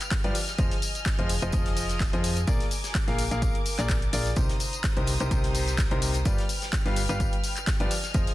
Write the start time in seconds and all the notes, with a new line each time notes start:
Already playing: B4 G5 F6
0.01 clap, closed hi-hat, tambourine
0.11 kick, snare, clap, closed hi-hat, tambourine
0.24 G2 F3 F4 G4 B4 D5, closed hi-hat
0.35 D#5 G#5, open hi-hat, tambourine
0.48 snare, closed hi-hat, tambourine
0.58 F1 F3 F4 G#4 C5 D#5, kick, closed hi-hat, tambourine
0.71 snare, closed hi-hat
0.82 open hi-hat, tambourine
0.95 closed hi-hat, tambourine
1.06 kick, snare, clap, closed hi-hat, tambourine
1.19 F1 F3 F4 G#4 C5 D#5, closed hi-hat
1.29 open hi-hat, tambourine
1.42 F1 F3 F4 G#4 C5 D#5, closed hi-hat, tambourine
1.52 F1 F3 F4 G#4 C5 D#5, kick, closed hi-hat, tambourine
1.66 snare, closed hi-hat
1.76 open hi-hat, tambourine
1.89 snare, closed hi-hat, tambourine
2.00 kick, snare, clap, closed hi-hat, tambourine
2.13 F2 F3 F4 G#4 C5 D#5, closed hi-hat
2.24 open hi-hat, tambourine
2.37 closed hi-hat, tambourine
2.47 A#1 A#3 F4 G#4 A#4 D5 D6, kick, closed hi-hat, tambourine
2.60 snare, closed hi-hat
2.71 open hi-hat, tambourine
2.84 snare, closed hi-hat, tambourine
2.95 kick, snare, clap, closed hi-hat, tambourine
3.08 A#1 A#3 F4 G#4 A#4 F5, snare, closed hi-hat
3.18 open hi-hat, tambourine
3.31 A#1 A#3 F4 G#4 A#4 F5, closed hi-hat, tambourine
3.42 kick, closed hi-hat, tambourine
3.55 closed hi-hat
3.65 open hi-hat, tambourine
3.79 A#1 A#3 F4 G#4 A#4 D5, clap, closed hi-hat, tambourine
3.89 kick, snare, clap, closed hi-hat, tambourine
4.02 closed hi-hat
4.13 A#1 F4 G#4 A#4 D5, open hi-hat, tambourine
4.26 snare, closed hi-hat, tambourine
4.36 C2 C3 D#4 G4 A#4 C5 A#5 D#6, kick, closed hi-hat, tambourine
4.49 snare, closed hi-hat
4.60 open hi-hat, tambourine
4.73 closed hi-hat, tambourine
4.84 kick, snare, clap, closed hi-hat, tambourine
4.97 C2 C3 D#4 G4 A#4 C5, closed hi-hat
5.07 open hi-hat, tambourine
5.20 C2 C3 D#4 G4 A#4 C5, closed hi-hat, tambourine
5.31 C2 C3 D#4 G4 A#4 C5, kick, closed hi-hat, tambourine
5.44 snare, closed hi-hat
5.55 open hi-hat, tambourine
5.68 snare, closed hi-hat, tambourine
5.78 kick, snare, clap, closed hi-hat, tambourine
5.91 C2 C3 D#4 G4 A#4 C5, closed hi-hat
6.02 open hi-hat, tambourine
6.14 closed hi-hat, tambourine
6.25 G1 G3 F4 G4 B4 D5 G5 F6, kick, closed hi-hat, tambourine
6.38 snare, closed hi-hat
6.49 open hi-hat, tambourine
6.62 snare, closed hi-hat, tambourine
6.73 kick, snare, clap, closed hi-hat, tambourine
6.86 G1 G3 F4 G4 B4 F5, snare, closed hi-hat
6.96 open hi-hat, tambourine
7.09 G1 G3 F4 G4 B4 F5, closed hi-hat, tambourine
7.20 kick, closed hi-hat, tambourine
7.33 closed hi-hat
7.44 open hi-hat, tambourine
7.56 clap, closed hi-hat, tambourine
7.67 kick, snare, clap, closed hi-hat, tambourine
7.80 G1 F3 F4 G4 B4 D5, closed hi-hat
7.91 D#5 G#5, open hi-hat, tambourine
8.04 snare, closed hi-hat, tambourine
8.14 F1 F3 F4 G#4 C5 D#5, kick, closed hi-hat, tambourine
8.27 snare, closed hi-hat